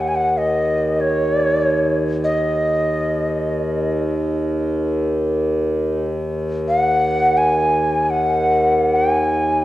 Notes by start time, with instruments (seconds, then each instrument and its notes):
Already playing: harmonium D#2
0.00 native american-style wooden flute F#5
0.08 native american-style wooden flute G#5
0.16 native american-style wooden flute F#5
0.29 native american-style wooden flute F#5
0.38 native american-style wooden flute D#5
1.00 native american-style wooden flute C#5
2.24 native american-style wooden flute D#5
6.69 native american-style wooden flute F#5
7.37 native american-style wooden flute G#5
8.10 native american-style wooden flute F#5
8.95 native american-style wooden flute G#5